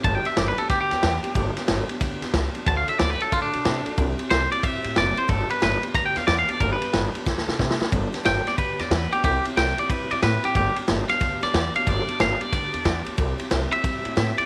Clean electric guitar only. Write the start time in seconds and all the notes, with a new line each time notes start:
0.05 A5
0.15 G5
0.26 E5
0.37 D5
0.48 B4
0.58 A4
0.70 G4
0.81 G4
2.68 A5
2.77 F5
2.89 E5
2.99 D5
3.10 B4
3.22 A4
3.33 F4
3.42 D4
4.30 C5
4.52 D5
4.64 E5
4.98 D5
5.18 C5
5.29 A4
5.51 B4
5.63 B4
5.95 A#5
6.06 G5
6.17 F5
6.27 D5
6.39 F5
6.50 D5
6.61 A#4
6.73 B4
8.26 G5
8.48 D5
8.58 B4
8.80 D5
8.91 B4
9.13 G4
9.25 G4
9.58 G5
9.79 D5
9.90 B4
10.11 D5
10.23 B4
10.45 G4
10.56 G4
11.10 F5
11.43 D5
11.76 F5
11.89 D5
12.21 F5
12.41 D5
13.73 E5
14.38 D5